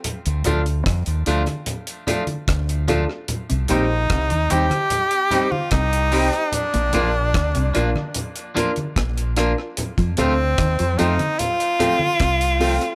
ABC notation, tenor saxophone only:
X:1
M:4/4
L:1/16
Q:1/4=74
K:Cdor
V:1 name="Tenor saxophone"
z16 | z2 E4 G4- G F E4 | D8 z8 | z2 C4 E2 F8 |]